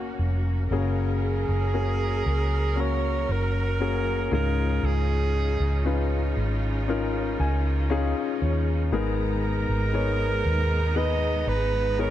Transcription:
0.00 0.15 F#1 medium
0.00 0.67 A#3 medium
0.00 0.71 A#3 soft
0.00 0.67 C#4 medium
0.00 0.72 C#4 soft
0.00 0.19 F#4 medium
0.00 0.67 F#4 medium
0.00 0.72 F#4 soft
0.00 0.73 A#4 medium
0.19 0.67 F1 medium
0.70 1.44 F#1 medium
0.70 2.22 C#3 soft
0.70 4.28 F#3 medium
0.70 1.69 A#3 medium
0.70 8.88 C#4 medium
0.70 1.70 C#4 medium
0.70 1.70 F#4 medium
0.70 2.75 G#4 soft
0.70 1.70 G#4 medium
0.70 4.28 A#4 medium
1.23 2.82 G#4 medium
1.49 2.22 F#1 medium
1.73 2.72 A#3 soft
1.73 2.72 C#4 soft
1.73 2.72 F#4 soft
1.73 2.72 G#4 medium
2.26 3.25 C#2 medium
2.75 3.74 A#3 medium
2.75 3.74 C#4 soft
2.75 3.75 F#4 soft
2.75 4.30 F#4 soft
2.75 3.75 A#4 medium
2.80 3.33 C#5 medium
3.29 4.28 F#1 medium
3.29 4.33 A#4 medium
3.80 4.32 A#3 medium
3.80 4.30 C#4 medium
3.80 4.32 F#4 medium
3.80 4.31 G#4 medium
4.31 4.80 C#2 medium
4.31 5.82 G#2 soft
4.31 8.88 C#3 medium
4.31 5.78 C#4 medium
4.31 5.78 D#4 medium
4.31 8.88 D#4 medium
4.31 8.88 F4 medium
4.31 5.78 F4 medium
4.31 5.78 G#4 medium
4.31 4.87 A#4 medium
4.83 5.56 C#2 medium
4.83 6.38 G#4 medium
5.60 6.32 C#2 medium
5.85 6.82 C#4 medium
5.85 6.82 D#4 soft
5.85 6.83 F4 soft
5.85 6.83 B4 medium
6.37 7.35 G#1 medium
6.88 7.85 C#4 medium
6.88 7.86 D#4 medium
6.88 7.86 F4 medium
6.88 7.86 A#4 medium
7.40 8.12 C#2 medium
7.40 7.87 G#5 medium
7.90 8.87 C#4 medium
7.90 8.87 D#4 medium
7.90 8.87 F4 medium
7.90 8.88 G#4 medium
7.90 8.38 F5 medium
8.42 8.89 D#2 medium
8.42 8.89 C#5 medium
8.92 9.64 G#1 medium
8.92 10.42 G#2 medium
8.92 10.42 D#3 medium
8.92 12.10 G#3 medium
8.92 9.89 B3 medium
8.92 12.10 B3 medium
8.92 9.89 D#4 medium
8.92 12.10 D#4 medium
8.92 9.89 G#4 medium
8.92 9.90 A#4 medium
8.92 12.10 A#5 medium
9.44 10.98 A#4 loud
9.69 10.42 G#1 medium
9.93 10.91 B3 medium
9.93 10.91 D#4 medium
9.93 10.91 G#4 medium
9.93 10.91 C#5 medium
10.45 11.44 D#2 medium
10.96 11.94 B3 medium
10.96 11.94 D#4 medium
10.96 11.94 G#4 medium
10.96 11.95 B4 medium
10.96 11.50 D#5 medium
11.47 12.10 G#1 medium
11.47 12.01 B4 medium
11.98 12.10 B3 medium
11.98 12.10 D#4 medium
11.98 12.10 G#4 medium
11.98 12.10 A#4 medium
11.98 12.10 C#5 medium

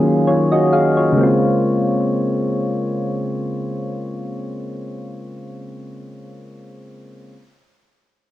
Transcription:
0.00 1.19 D#3 medium
0.00 1.19 F#3 medium
0.00 1.18 A#3 medium
0.00 1.19 C#4 medium
0.00 0.28 F4 medium
0.00 0.27 G#4 medium
0.27 0.50 F4 soft
0.27 0.50 C#5 medium
0.52 0.71 F#4 medium
0.52 0.71 D#5 medium
0.73 0.96 G#4 medium
0.73 0.96 F5 medium
0.97 1.22 F4 soft
0.97 1.40 C#5 medium
1.12 5.77 C#3 medium
1.12 5.79 G#3 medium
1.18 5.82 A#3 medium
1.18 5.85 C4 medium
1.23 5.88 F4 medium

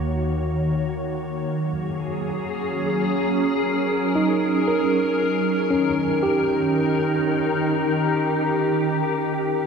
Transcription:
0.00 1.46 D#2 medium
0.00 1.51 D#3 medium
0.00 3.20 A#3 medium
0.00 3.20 F#4 medium
0.00 3.20 C#5 medium
1.51 5.71 F#3 medium
1.77 5.71 G#4 medium
2.24 7.37 C#4 medium
3.42 9.67 A#4 medium
4.15 5.92 D#4 medium
4.68 6.44 A#4 soft
5.70 9.67 D#3 medium
5.70 9.67 C#4 medium
6.22 9.67 D#4 medium
6.22 9.67 G4 soft
7.56 9.67 G4 medium

